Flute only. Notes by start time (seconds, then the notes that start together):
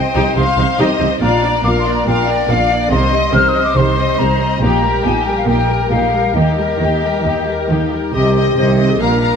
Already playing: G5
0.36 C6
1.22 A#5
1.64 D6
1.80 C6
1.94 A#5
2.07 G5
2.50 F5
2.91 C6
3.34 F6
3.49 D#6
3.64 D6
3.77 C6
4.19 A#5
4.61 A#5
5.05 G#5
5.27 G5
5.38 F5
5.48 G5
5.90 F5
6.35 D#5